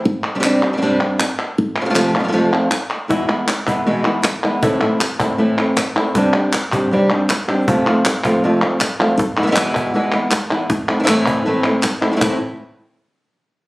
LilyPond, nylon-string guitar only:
\new Staff \with { instrumentName = "Nylon-string guitar" } { \time 4/4 \key a \minor \tempo 4 = 158 r4 <g, c g c' d' g'>8 <g c' d' g'>8 <g, c g c' d' g'>8 <g c' d' g'>8 r4 | r4 <f, c f a c' f'>8 <f a c' f'>8 <f, c f a c' f'>8 <f a c' f'>8 r4 | <e, b, e gis b e'>8 <e gis b e'>8 r8 <e gis b e'>8 <e, b, e gis b e'>8 <e gis b e'>8 r8 <e gis b e'>8 | <a, e a c' e'>8 <a c' e'>8 r8 <a c' e'>8 <a, e a c' e'>8 <a c' e'>8 r8 <a c' e'>8 |
<g, c g c' d' g'>8 <g c' d' g'>8 r8 <g c' d' g'>8 <g, c g c' d' g'>8 <g c' d' g'>8 r8 <g c' d' g'>8 | <f, c f a c' f'>8 <f a c' f'>8 r8 <f a c' f'>8 <f, c f a c' f'>8 <f a c' f'>8 r8 <f a c' f'>8 | r8 <e gis b e'>8 <e, b, e gis b e'>4 <e, b, e gis b e'>8 <e gis b e'>8 r8 <e gis b e'>8 | r8 <a c' e'>8 <a, e a c' e'>4 <a, e a c' e'>8 <a c' e'>8 r8 <a c' e'>8 |
<a, e a c' e'>8 r2. r8 | }